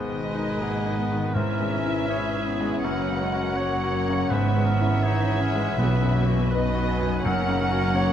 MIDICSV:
0, 0, Header, 1, 13, 480
1, 0, Start_track
1, 0, Tempo, 749064
1, 1826, Time_signature, 4, 2, 24, 8
1, 1826, Tempo, 730816
1, 5292, End_track
2, 0, Start_track
2, 0, Title_t, "Flute"
2, 0, Program_c, 0, 73
2, 0, Note_on_c, 0, 80, 39
2, 395, Note_on_c, 0, 78, 45
2, 405, Note_off_c, 0, 80, 0
2, 874, Note_on_c, 0, 76, 51
2, 883, Note_off_c, 0, 78, 0
2, 1826, Note_off_c, 0, 76, 0
2, 1829, Note_on_c, 0, 78, 43
2, 2299, Note_off_c, 0, 78, 0
2, 2319, Note_on_c, 0, 78, 50
2, 4037, Note_off_c, 0, 78, 0
2, 4229, Note_on_c, 0, 75, 57
2, 4467, Note_on_c, 0, 80, 59
2, 4477, Note_off_c, 0, 75, 0
2, 4717, Note_on_c, 0, 78, 64
2, 4726, Note_off_c, 0, 80, 0
2, 4944, Note_off_c, 0, 78, 0
2, 4948, Note_on_c, 0, 78, 55
2, 5292, Note_off_c, 0, 78, 0
2, 5292, End_track
3, 0, Start_track
3, 0, Title_t, "Violin section"
3, 0, Program_c, 1, 48
3, 0, Note_on_c, 1, 75, 49
3, 847, Note_off_c, 1, 75, 0
3, 872, Note_on_c, 1, 76, 53
3, 1821, Note_on_c, 1, 78, 49
3, 1825, Note_off_c, 1, 76, 0
3, 2769, Note_off_c, 1, 78, 0
3, 2788, Note_on_c, 1, 76, 55
3, 4227, Note_on_c, 1, 75, 58
3, 4236, Note_off_c, 1, 76, 0
3, 4706, Note_on_c, 1, 78, 62
3, 4710, Note_off_c, 1, 75, 0
3, 5292, Note_off_c, 1, 78, 0
3, 5292, End_track
4, 0, Start_track
4, 0, Title_t, "Oboe"
4, 0, Program_c, 2, 68
4, 0, Note_on_c, 2, 71, 41
4, 860, Note_on_c, 2, 70, 46
4, 869, Note_off_c, 2, 71, 0
4, 1342, Note_off_c, 2, 70, 0
4, 1346, Note_on_c, 2, 68, 46
4, 1822, Note_on_c, 2, 70, 43
4, 1832, Note_off_c, 2, 68, 0
4, 2296, Note_on_c, 2, 73, 55
4, 2306, Note_off_c, 2, 70, 0
4, 2777, Note_on_c, 2, 71, 51
4, 2787, Note_off_c, 2, 73, 0
4, 3014, Note_on_c, 2, 70, 49
4, 3024, Note_off_c, 2, 71, 0
4, 3259, Note_on_c, 2, 68, 52
4, 3268, Note_off_c, 2, 70, 0
4, 3743, Note_off_c, 2, 68, 0
4, 3747, Note_on_c, 2, 71, 49
4, 4057, Note_off_c, 2, 71, 0
4, 4233, Note_on_c, 2, 71, 54
4, 4687, Note_off_c, 2, 71, 0
4, 4708, Note_on_c, 2, 70, 55
4, 5174, Note_off_c, 2, 70, 0
4, 5185, Note_on_c, 2, 73, 57
4, 5292, Note_off_c, 2, 73, 0
4, 5292, End_track
5, 0, Start_track
5, 0, Title_t, "Violin section"
5, 0, Program_c, 3, 48
5, 0, Note_on_c, 3, 70, 45
5, 846, Note_off_c, 3, 70, 0
5, 879, Note_on_c, 3, 71, 54
5, 2284, Note_off_c, 3, 71, 0
5, 2303, Note_on_c, 3, 70, 52
5, 2788, Note_on_c, 3, 71, 55
5, 2789, Note_off_c, 3, 70, 0
5, 4713, Note_off_c, 3, 71, 0
5, 4714, Note_on_c, 3, 70, 60
5, 5292, Note_off_c, 3, 70, 0
5, 5292, End_track
6, 0, Start_track
6, 0, Title_t, "French horn section"
6, 0, Program_c, 4, 60
6, 0, Note_on_c, 4, 47, 49
6, 0, Note_on_c, 4, 68, 47
6, 845, Note_off_c, 4, 68, 0
6, 846, Note_off_c, 4, 47, 0
6, 866, Note_on_c, 4, 61, 50
6, 870, Note_on_c, 4, 64, 52
6, 1821, Note_on_c, 4, 66, 55
6, 1824, Note_off_c, 4, 64, 0
6, 2788, Note_off_c, 4, 66, 0
6, 2795, Note_on_c, 4, 52, 54
6, 3752, Note_on_c, 4, 47, 64
6, 3754, Note_off_c, 4, 61, 0
6, 4213, Note_off_c, 4, 52, 0
6, 4235, Note_on_c, 4, 63, 60
6, 4692, Note_off_c, 4, 47, 0
6, 4706, Note_on_c, 4, 58, 63
6, 5186, Note_off_c, 4, 63, 0
6, 5190, Note_on_c, 4, 61, 66
6, 5292, Note_off_c, 4, 58, 0
6, 5292, Note_off_c, 4, 61, 0
6, 5292, End_track
7, 0, Start_track
7, 0, Title_t, "Harp"
7, 0, Program_c, 5, 46
7, 0, Note_on_c, 5, 44, 44
7, 18, Note_on_c, 5, 47, 33
7, 148, Note_on_c, 5, 63, 35
7, 271, Note_on_c, 5, 68, 36
7, 387, Note_on_c, 5, 75, 37
7, 505, Note_off_c, 5, 68, 0
7, 512, Note_on_c, 5, 68, 37
7, 632, Note_on_c, 5, 59, 38
7, 754, Note_on_c, 5, 51, 36
7, 866, Note_off_c, 5, 44, 0
7, 874, Note_on_c, 5, 44, 48
7, 889, Note_off_c, 5, 75, 0
7, 892, Note_off_c, 5, 51, 0
7, 892, Note_off_c, 5, 63, 0
7, 991, Note_on_c, 5, 61, 34
7, 1109, Note_on_c, 5, 64, 38
7, 1221, Note_off_c, 5, 68, 0
7, 1229, Note_on_c, 5, 68, 42
7, 1347, Note_on_c, 5, 76, 40
7, 1457, Note_off_c, 5, 68, 0
7, 1464, Note_on_c, 5, 68, 41
7, 1574, Note_off_c, 5, 61, 0
7, 1581, Note_on_c, 5, 61, 37
7, 1700, Note_on_c, 5, 56, 37
7, 1823, Note_on_c, 5, 42, 50
7, 1841, Note_off_c, 5, 47, 0
7, 1841, Note_off_c, 5, 56, 0
7, 1842, Note_off_c, 5, 68, 0
7, 1843, Note_off_c, 5, 64, 0
7, 1843, Note_off_c, 5, 76, 0
7, 1844, Note_off_c, 5, 59, 0
7, 1845, Note_off_c, 5, 44, 0
7, 1932, Note_off_c, 5, 61, 0
7, 1940, Note_on_c, 5, 61, 32
7, 2064, Note_on_c, 5, 66, 38
7, 2189, Note_on_c, 5, 70, 38
7, 2307, Note_on_c, 5, 78, 44
7, 2419, Note_off_c, 5, 70, 0
7, 2426, Note_on_c, 5, 70, 42
7, 2543, Note_off_c, 5, 61, 0
7, 2551, Note_on_c, 5, 61, 47
7, 2669, Note_on_c, 5, 49, 38
7, 2788, Note_on_c, 5, 44, 50
7, 2808, Note_off_c, 5, 42, 0
7, 2809, Note_off_c, 5, 49, 0
7, 2809, Note_off_c, 5, 66, 0
7, 2809, Note_off_c, 5, 70, 0
7, 2810, Note_off_c, 5, 78, 0
7, 2909, Note_off_c, 5, 61, 0
7, 2917, Note_on_c, 5, 61, 38
7, 3031, Note_on_c, 5, 52, 41
7, 3150, Note_on_c, 5, 83, 47
7, 3269, Note_on_c, 5, 73, 49
7, 3392, Note_on_c, 5, 68, 49
7, 3507, Note_off_c, 5, 61, 0
7, 3515, Note_on_c, 5, 61, 42
7, 3629, Note_on_c, 5, 56, 45
7, 3753, Note_on_c, 5, 47, 54
7, 3772, Note_off_c, 5, 56, 0
7, 3775, Note_off_c, 5, 73, 0
7, 3776, Note_off_c, 5, 44, 0
7, 3776, Note_off_c, 5, 61, 0
7, 3778, Note_off_c, 5, 52, 0
7, 3875, Note_on_c, 5, 54, 37
7, 3991, Note_on_c, 5, 66, 44
7, 4113, Note_on_c, 5, 71, 41
7, 4235, Note_on_c, 5, 78, 44
7, 4345, Note_off_c, 5, 71, 0
7, 4353, Note_on_c, 5, 71, 47
7, 4475, Note_on_c, 5, 59, 44
7, 4586, Note_off_c, 5, 54, 0
7, 4594, Note_on_c, 5, 54, 44
7, 4709, Note_on_c, 5, 42, 64
7, 4731, Note_off_c, 5, 47, 0
7, 4732, Note_off_c, 5, 71, 0
7, 4733, Note_off_c, 5, 59, 0
7, 4733, Note_off_c, 5, 68, 0
7, 4734, Note_off_c, 5, 83, 0
7, 4830, Note_on_c, 5, 61, 45
7, 4944, Note_off_c, 5, 66, 0
7, 4952, Note_on_c, 5, 66, 46
7, 5065, Note_on_c, 5, 70, 50
7, 5178, Note_off_c, 5, 78, 0
7, 5186, Note_on_c, 5, 78, 48
7, 5292, Note_off_c, 5, 42, 0
7, 5292, Note_off_c, 5, 54, 0
7, 5292, Note_off_c, 5, 61, 0
7, 5292, Note_off_c, 5, 66, 0
7, 5292, Note_off_c, 5, 70, 0
7, 5292, Note_off_c, 5, 78, 0
7, 5292, End_track
8, 0, Start_track
8, 0, Title_t, "Viola section"
8, 0, Program_c, 6, 48
8, 0, Note_on_c, 6, 56, 51
8, 848, Note_off_c, 6, 56, 0
8, 873, Note_on_c, 6, 61, 45
8, 4237, Note_off_c, 6, 61, 0
8, 4240, Note_on_c, 6, 59, 58
8, 4713, Note_on_c, 6, 61, 63
8, 4717, Note_off_c, 6, 59, 0
8, 5292, Note_off_c, 6, 61, 0
8, 5292, End_track
9, 0, Start_track
9, 0, Title_t, "Grand piano"
9, 0, Program_c, 7, 0
9, 0, Note_on_c, 7, 44, 43
9, 42, Control_c, 7, 64, 127
9, 61, Note_on_c, 7, 51, 34
9, 223, Note_on_c, 7, 63, 40
9, 325, Note_off_c, 7, 51, 0
9, 394, Note_on_c, 7, 68, 38
9, 485, Note_off_c, 7, 63, 0
9, 554, Note_on_c, 7, 63, 37
9, 650, Note_off_c, 7, 68, 0
9, 713, Note_on_c, 7, 51, 35
9, 810, Note_off_c, 7, 63, 0
9, 848, Note_off_c, 7, 44, 0
9, 866, Note_on_c, 7, 44, 50
9, 873, Note_off_c, 7, 51, 0
9, 886, Control_c, 7, 64, 0
9, 980, Control_c, 7, 64, 127
9, 1029, Note_on_c, 7, 56, 36
9, 1190, Note_on_c, 7, 64, 40
9, 1285, Note_off_c, 7, 56, 0
9, 1348, Note_on_c, 7, 73, 40
9, 1446, Note_off_c, 7, 64, 0
9, 1513, Note_on_c, 7, 64, 39
9, 1604, Note_off_c, 7, 73, 0
9, 1670, Note_on_c, 7, 56, 35
9, 1765, Note_off_c, 7, 64, 0
9, 1797, Note_off_c, 7, 44, 0
9, 1823, Note_on_c, 7, 42, 49
9, 1827, Note_off_c, 7, 56, 0
9, 1838, Control_c, 7, 64, 0
9, 1933, Control_c, 7, 64, 127
9, 1992, Note_on_c, 7, 49, 36
9, 2144, Note_on_c, 7, 66, 40
9, 2246, Note_off_c, 7, 49, 0
9, 2320, Note_on_c, 7, 73, 42
9, 2403, Note_off_c, 7, 66, 0
9, 2476, Note_on_c, 7, 66, 39
9, 2572, Note_off_c, 7, 73, 0
9, 2636, Note_on_c, 7, 49, 36
9, 2730, Note_off_c, 7, 66, 0
9, 2763, Note_off_c, 7, 42, 0
9, 2783, Note_on_c, 7, 44, 49
9, 2793, Note_off_c, 7, 49, 0
9, 2803, Control_c, 7, 64, 0
9, 2925, Control_c, 7, 64, 127
9, 2953, Note_on_c, 7, 56, 35
9, 3112, Note_on_c, 7, 64, 45
9, 3208, Note_off_c, 7, 56, 0
9, 3275, Note_on_c, 7, 73, 44
9, 3371, Note_off_c, 7, 64, 0
9, 3434, Note_on_c, 7, 64, 39
9, 3534, Note_off_c, 7, 73, 0
9, 3602, Note_on_c, 7, 56, 42
9, 3693, Note_off_c, 7, 64, 0
9, 3727, Note_off_c, 7, 44, 0
9, 3759, Note_on_c, 7, 35, 51
9, 3760, Note_off_c, 7, 56, 0
9, 3770, Control_c, 7, 64, 0
9, 3893, Control_c, 7, 64, 127
9, 3916, Note_on_c, 7, 42, 41
9, 4069, Note_on_c, 7, 66, 43
9, 4172, Note_off_c, 7, 42, 0
9, 4229, Note_on_c, 7, 71, 50
9, 4329, Note_off_c, 7, 66, 0
9, 4386, Note_on_c, 7, 66, 47
9, 4489, Note_off_c, 7, 71, 0
9, 4550, Note_on_c, 7, 42, 42
9, 4646, Note_off_c, 7, 66, 0
9, 4689, Note_off_c, 7, 35, 0
9, 4706, Note_off_c, 7, 42, 0
9, 4716, Note_on_c, 7, 42, 58
9, 4725, Control_c, 7, 64, 0
9, 4815, Control_c, 7, 64, 127
9, 4867, Note_on_c, 7, 49, 44
9, 5020, Note_on_c, 7, 66, 50
9, 5121, Note_off_c, 7, 49, 0
9, 5178, Note_on_c, 7, 73, 49
9, 5277, Note_off_c, 7, 66, 0
9, 5292, Note_off_c, 7, 42, 0
9, 5292, Note_off_c, 7, 73, 0
9, 5292, End_track
10, 0, Start_track
10, 0, Title_t, "Clarinet"
10, 0, Program_c, 8, 71
10, 0, Note_on_c, 8, 59, 49
10, 128, Note_off_c, 8, 59, 0
10, 144, Note_on_c, 8, 56, 47
10, 383, Note_on_c, 8, 58, 47
10, 392, Note_off_c, 8, 56, 0
10, 631, Note_on_c, 8, 59, 45
10, 640, Note_off_c, 8, 58, 0
10, 859, Note_on_c, 8, 61, 46
10, 869, Note_off_c, 8, 59, 0
10, 1333, Note_off_c, 8, 61, 0
10, 1337, Note_on_c, 8, 61, 48
10, 1588, Note_on_c, 8, 59, 50
10, 1597, Note_off_c, 8, 61, 0
10, 1824, Note_on_c, 8, 58, 50
10, 1834, Note_off_c, 8, 59, 0
10, 2065, Note_on_c, 8, 56, 47
10, 2075, Note_off_c, 8, 58, 0
10, 2302, Note_on_c, 8, 58, 50
10, 2311, Note_off_c, 8, 56, 0
10, 2781, Note_on_c, 8, 59, 52
10, 2791, Note_off_c, 8, 58, 0
10, 3261, Note_on_c, 8, 63, 57
10, 3270, Note_off_c, 8, 59, 0
10, 3507, Note_on_c, 8, 61, 64
10, 3517, Note_off_c, 8, 63, 0
10, 3752, Note_off_c, 8, 61, 0
10, 3756, Note_on_c, 8, 59, 56
10, 3984, Note_on_c, 8, 58, 60
10, 3994, Note_off_c, 8, 59, 0
10, 4222, Note_off_c, 8, 58, 0
10, 4226, Note_on_c, 8, 59, 49
10, 4537, Note_off_c, 8, 59, 0
10, 4704, Note_on_c, 8, 61, 59
10, 5177, Note_on_c, 8, 58, 62
10, 5187, Note_off_c, 8, 61, 0
10, 5292, Note_off_c, 8, 58, 0
10, 5292, End_track
11, 0, Start_track
11, 0, Title_t, "Timpani"
11, 0, Program_c, 10, 47
11, 3750, Note_on_c, 10, 47, 69
11, 4447, Note_off_c, 10, 47, 0
11, 4707, Note_on_c, 10, 42, 80
11, 5292, Note_off_c, 10, 42, 0
11, 5292, End_track
12, 0, Start_track
12, 0, Title_t, "Cello section"
12, 0, Program_c, 11, 48
12, 0, Note_on_c, 11, 44, 48
12, 1801, Note_off_c, 11, 44, 0
12, 1829, Note_on_c, 11, 42, 51
12, 2773, Note_off_c, 11, 42, 0
12, 2793, Note_on_c, 11, 44, 54
12, 3740, Note_off_c, 11, 44, 0
12, 3754, Note_on_c, 11, 47, 63
12, 4694, Note_off_c, 11, 47, 0
12, 4711, Note_on_c, 11, 42, 60
12, 5292, Note_off_c, 11, 42, 0
12, 5292, End_track
13, 0, Start_track
13, 0, Title_t, "Double bass section"
13, 0, Program_c, 12, 48
13, 0, Note_on_c, 12, 32, 47
13, 1803, Note_off_c, 12, 32, 0
13, 1823, Note_on_c, 12, 30, 52
13, 2770, Note_off_c, 12, 30, 0
13, 2784, Note_on_c, 12, 32, 60
13, 3735, Note_off_c, 12, 32, 0
13, 3748, Note_on_c, 12, 35, 57
13, 4691, Note_off_c, 12, 35, 0
13, 4707, Note_on_c, 12, 30, 62
13, 5292, Note_off_c, 12, 30, 0
13, 5292, End_track
0, 0, End_of_file